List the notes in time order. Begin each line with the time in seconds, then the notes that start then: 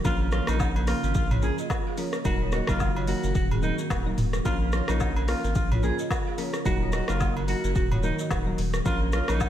Already playing: A#3
0.04 A#1 C#3 F3 A#3 C#4 F4 A#4, kick, high agogo, shaker
0.21 C#4 A#4
0.32 F4 C#5, cross-stick, shaker
0.47 A#1 F3 A#3 C#4 D#4 A#4, cross-stick, high agogo, shaker
0.59 kick, low woodblock, shaker
0.76 C#4 A#4, high agogo
0.87 F3 A#3 C#4 F4 A#4, cross-stick, open hi-hat, shaker
1.03 G#1 C#4 A#4, shaker
1.15 A#1 F4, kick, shaker
1.31 F4 C#5, mid tom, high agogo
1.42 F3 A#3 C#4 G#4 A#4, shaker
1.58 F#4 D#5, shaker
1.70 kick, cross-stick, high agogo, low woodblock, shaker
1.87 G#4 F5
1.97 F3 A#3 C#4 F4 A#4 C#5, open hi-hat, shaker
2.13 cross-stick, shaker
2.25 D#1 D#3 F#3 A#3 D#4 F#4 A#4, kick, high agogo, shaker
2.42 F4 C#5
2.52 F#4 D#5, cross-stick, shaker
2.67 F#1 F#3 A#3 D#4 F4 A#4, kick, cross-stick, high agogo, shaker
2.80 kick, low woodblock, shaker
2.96 F4 C#5, high agogo
3.07 F#3 A#3 D#4 F#4 A#4, open hi-hat, shaker
3.23 F#1 C#4 A#4, shaker
3.35 D#1 F#4, kick, shaker
3.51 C4 G#4, mid tom, high agogo
3.62 F#3 A#3 D#4 A#4, shaker
3.78 C#4 A#4, shaker
3.90 D#1 A#3 F#4, kick, cross-stick, high agogo, low woodblock, shaker
4.06 F#3 A#3 D#4 A#4
4.18 D#1, mid tom, open hi-hat, shaker
4.33 cross-stick, shaker
4.45 A#1 C#3 F3 A#3 C#4 F4 A#4, kick, high agogo, shaker
4.62 C#4 A#4
4.72 F4 C#5, cross-stick, shaker
4.88 A#1 F3 A#3 C#4 D#4 A#4, cross-stick, high agogo, shaker
5.00 kick, low woodblock, shaker
5.16 C#4 A#4, high agogo
5.28 F3 A#3 C#4 F4 A#4, cross-stick, open hi-hat, shaker
5.44 G#1 C#4 A#4, shaker
5.55 A#1 F4, kick, shaker
5.72 F4 C#5, mid tom, high agogo
5.83 F3 A#3 C#4 G#4 A#4, shaker
5.99 F#4 D#5, shaker
6.10 kick, cross-stick, high agogo, low woodblock, shaker
6.27 G#4 F5
6.38 F3 A#3 C#4 F4 A#4 C#5, open hi-hat, shaker
6.53 cross-stick, shaker
6.65 D#1 D#3 F#3 A#3 D#4 F#4 A#4, kick, high agogo, shaker
6.82 F4 C#5
6.92 F#4 D#5, cross-stick, shaker
7.08 F#1 F#3 A#3 D#4 F4 A#4, cross-stick, high agogo, shaker
7.20 kick, low woodblock, shaker
7.37 C#4 A#4, high agogo
7.48 F#3 A#3 D#4 F#4 A#4, open hi-hat, shaker
7.64 F#1 C#4 A#4, shaker
7.75 D#1 F#4, kick, shaker
7.92 F4 C#5, mid tom, high agogo
8.03 F#3 A#3 D#4 A#4, shaker
8.19 F#4 D#5, shaker
8.31 D#1 D#4 A#4, kick, cross-stick, high agogo, low woodblock, shaker
8.46 F#3 A#3 D#4 A#4
8.58 D#1, open hi-hat, shaker
8.74 cross-stick, shaker
8.85 A#1 C#3 F3 A#3 C#4 F4 A#4, kick, high agogo, shaker
9.02 C#4 A#4
9.12 F4 C#5, cross-stick, shaker
9.28 A#1 F3 A#3 C#4 D#4 A#4, cross-stick, high agogo, shaker
9.40 kick, low woodblock, shaker